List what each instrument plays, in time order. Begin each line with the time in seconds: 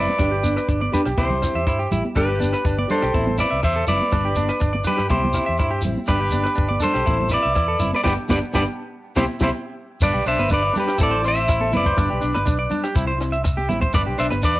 Already playing: steel-string acoustic guitar C4 E4, clean electric guitar B4 D5
0.10 high conga
0.19 fingered electric bass G1, steel-string acoustic guitar G3 B3 D4 G4, clean electric guitar D4, kick, cross-stick, shekere
0.31 clean electric guitar G4
0.43 steel-string acoustic guitar B3 D4 G4, clean electric guitar D4, closed hi-hat, high conga, shekere
0.56 clean electric guitar B4, cross-stick
0.68 fingered electric bass G1, clean electric guitar D4, kick, shekere
0.81 clean electric guitar D5, high conga
0.92 steel-string acoustic guitar B3 D4 G4, clean electric guitar D4 G4 B4, closed hi-hat, low conga, shekere
1.05 fingered electric bass B1, clean electric guitar G4, cross-stick, shekere
1.17 fingered electric bass C2, steel-string acoustic guitar E3 C4 E4 G4, clean electric guitar E4 G4 C5, kick, high conga, shekere
1.30 high conga, low conga
1.42 steel-string acoustic guitar C4 E4 G4, cross-stick, closed hi-hat, shekere
1.55 fingered electric bass E2, clean electric guitar E5, shekere
1.67 fingered electric bass G2, clean electric guitar E4, kick, cross-stick, shekere
1.79 clean electric guitar G4
1.92 fingered electric bass A1, clean electric guitar E4, steel-string acoustic guitar E4 G4, muted steel-string acoustic guitar stroke, closed hi-hat, low conga, shekere
2.05 high conga
2.16 fingered electric bass G1, steel-string acoustic guitar G3 D4 G4, clean electric guitar D4 G4 B4, muted steel-string acoustic guitar stroke, kick, cross-stick, shekere
2.29 clean electric guitar G4
2.39 steel-string acoustic guitar B3 D4 G4, clean electric guitar D4, closed hi-hat, high conga, shekere
2.53 clean electric guitar B4, cross-stick
2.65 fingered electric bass G1, clean electric guitar D4, kick, shekere
2.78 clean electric guitar D5, high conga
2.88 steel-string acoustic guitar B3 D4 G4, clean electric guitar D4 A4 C5, closed hi-hat, low conga
3.02 fingered electric bass B1, clean electric guitar G4, cross-stick
3.13 fingered electric bass A1, steel-string acoustic guitar C4 E4, clean electric guitar E4, muted steel-string acoustic guitar stroke, kick, high conga, shekere
3.27 high conga, low conga
3.38 steel-string acoustic guitar C4 E4, clean electric guitar E4 B4 D5, cross-stick, closed hi-hat, shekere
3.50 fingered electric bass C2, clean electric guitar E5
3.63 fingered electric bass E2, clean electric guitar C5 E5, muted clean electric guitar stroke, kick, cross-stick, shekere
3.76 clean electric guitar A4
3.87 fingered electric bass F#1, steel-string acoustic guitar C4 E4, clean electric guitar E4 B4 D5, closed hi-hat, low conga, shekere
4.01 high conga
4.11 fingered electric bass G1, steel-string acoustic guitar G3 B3 D4, clean electric guitar D4, kick, cross-stick, shekere
4.25 clean electric guitar G4
4.35 steel-string acoustic guitar B3 D4, clean electric guitar D4, closed hi-hat, high conga, shekere
4.49 clean electric guitar B4, cross-stick
4.60 fingered electric bass G1, clean electric guitar D4, kick, shekere
4.73 clean electric guitar D5, high conga
4.84 steel-string acoustic guitar B3 D4, clean electric guitar D4 G4 B4, closed hi-hat, low conga, shekere
4.97 fingered electric bass G2, clean electric guitar G4, cross-stick
5.09 fingered electric bass C2, steel-string acoustic guitar G3 C4 E4, clean electric guitar E4 G4 C5, kick, high conga, shekere
5.25 high conga, low conga
5.33 steel-string acoustic guitar C4 E4, clean electric guitar E4, cross-stick, closed hi-hat, shekere
5.46 fingered electric bass E2, clean electric guitar E5
5.57 fingered electric bass G2, clean electric guitar E4, kick, cross-stick, shekere
5.71 clean electric guitar G4
5.82 fingered electric bass A1, steel-string acoustic guitar C4 E4, closed hi-hat, low conga, shekere
5.98 high conga
6.06 fingered electric bass G1, steel-string acoustic guitar G3 B3 D4, clean electric guitar D4 G4 B4, kick, cross-stick, shekere
6.20 clean electric guitar G4
6.31 steel-string acoustic guitar B3 D4, clean electric guitar D4, closed hi-hat, high conga, shekere
6.44 clean electric guitar B4, cross-stick
6.55 fingered electric bass G1, clean electric guitar D4, kick, shekere
6.69 clean electric guitar D5, high conga
6.80 steel-string acoustic guitar B3 D4, clean electric guitar D4 A4 C5, closed hi-hat, shekere
6.84 low conga
6.94 fingered electric bass B1, clean electric guitar G4, cross-stick
7.06 fingered electric bass A1, steel-string acoustic guitar E3 C4 E4, clean electric guitar E4, kick, high conga, shekere
7.21 high conga, low conga
7.29 steel-string acoustic guitar C4 E4, clean electric guitar E4 B4, cross-stick, closed hi-hat, shekere
7.34 clean electric guitar D5
7.43 fingered electric bass C2, clean electric guitar E5
7.54 fingered electric bass E2, clean electric guitar E4, kick, cross-stick, shekere
7.68 clean electric guitar A4
7.79 fingered electric bass F#1, steel-string acoustic guitar C4 E4, clean electric guitar E4, closed hi-hat, low conga, shekere
7.93 clean electric guitar B4 D5, high conga
8.04 fingered electric bass G1, steel-string acoustic guitar G3 B3 D4, clean electric guitar B3 D4 G4 B4 D5, kick, snare, high conga, shekere
8.28 fingered electric bass G1, steel-string acoustic guitar G3 B3 D4, clean electric guitar B3 D4 G4 B4 D5, kick, snare, high conga, shekere
8.53 fingered electric bass G1, steel-string acoustic guitar G3 B3 D4, clean electric guitar B3 D4 G4 B4 D5, kick, snare, high conga, shekere
9.16 fingered electric bass C2, steel-string acoustic guitar G3 C4 E4, clean electric guitar C4 E4 G4 C5, kick, snare, high conga, shekere
9.39 fingered electric bass C2, steel-string acoustic guitar G3 C4 E4, clean electric guitar C4 E4 G4 C5, kick, snare, high conga, shekere
10.01 fingered electric bass G1, steel-string acoustic guitar G3 B3 D4, clean electric guitar D4 B4 D5, kick, cross-stick, crash, shekere
10.13 fingered electric bass B1, clean electric guitar G4
10.26 fingered electric bass B1, steel-string acoustic guitar B3 D4, clean electric guitar D4 C5 E5, closed hi-hat, shekere
10.38 fingered electric bass G1, clean electric guitar B4, cross-stick, closed hi-hat, high conga
10.49 fingered electric bass G1, clean electric guitar D4 B4, kick, closed hi-hat, high conga, shekere
10.54 clean electric guitar D5
10.63 muted clean electric guitar stroke
10.74 steel-string acoustic guitar B3 D4, clean electric guitar D4 G4, closed hi-hat, low conga, shekere
10.80 clean electric guitar B4
10.88 clean electric guitar G4, cross-stick, closed hi-hat
10.98 fingered electric bass A1, steel-string acoustic guitar E3 C4 E4, clean electric guitar E4 A4, kick, closed hi-hat, shekere
11.03 clean electric guitar D5
11.11 clean electric guitar C5
11.22 steel-string acoustic guitar C4 E4, clean electric guitar C5, cross-stick, closed hi-hat, shekere
11.28 clean electric guitar E5
11.35 clean electric guitar E5, closed hi-hat
11.48 clean electric guitar E4, kick, cross-stick, closed hi-hat, shekere
11.60 clean electric guitar A4, high conga
11.71 fingered electric bass F#1, steel-string acoustic guitar C4 E4, clean electric guitar E4 B4, closed hi-hat, high conga, low conga, shekere
11.77 clean electric guitar D5
11.86 clean electric guitar C5, kick, closed hi-hat, high conga
11.96 fingered electric bass G1, steel-string acoustic guitar G3 B3 D4, clean electric guitar D4, kick, cross-stick, closed hi-hat, shekere
12.10 fingered electric bass B1, clean electric guitar G4
12.20 fingered electric bass B1, steel-string acoustic guitar B3 D4, clean electric guitar D4, closed hi-hat, shekere
12.34 fingered electric bass G1, clean electric guitar B4, cross-stick, closed hi-hat, high conga
12.46 fingered electric bass B1, clean electric guitar D4, kick, closed hi-hat, high conga, shekere
12.59 clean electric guitar D5
12.70 steel-string acoustic guitar B3 D4, clean electric guitar D4, closed hi-hat, low conga, shekere
12.84 clean electric guitar G4, cross-stick, closed hi-hat
12.94 fingered electric bass C2, steel-string acoustic guitar G3 C4 E4, clean electric guitar E4, kick, closed hi-hat, shekere
13.07 clean electric guitar C5
13.18 steel-string acoustic guitar C4 E4, cross-stick, closed hi-hat, shekere
13.32 clean electric guitar E5, closed hi-hat
13.44 muted clean electric guitar stroke, kick, cross-stick, closed hi-hat, shekere
13.57 clean electric guitar G4, high conga
13.69 fingered electric bass A1, steel-string acoustic guitar C4 E4, clean electric guitar E4, closed hi-hat, high conga, low conga, shekere
13.81 clean electric guitar C5, kick, closed hi-hat, high conga
13.92 fingered electric bass G1, steel-string acoustic guitar G3 B3 D4, clean electric guitar D4 B4 D5, kick, cross-stick, closed hi-hat, shekere
14.06 fingered electric bass B1, clean electric guitar G4
14.17 fingered electric bass B1, steel-string acoustic guitar B3 D4, clean electric guitar D4 C5 E5, closed hi-hat, shekere
14.30 fingered electric bass G1, clean electric guitar B4, cross-stick, closed hi-hat, high conga
14.42 fingered electric bass E2, clean electric guitar D4 B4 D5, kick, closed hi-hat, high conga, shekere
14.55 clean electric guitar D5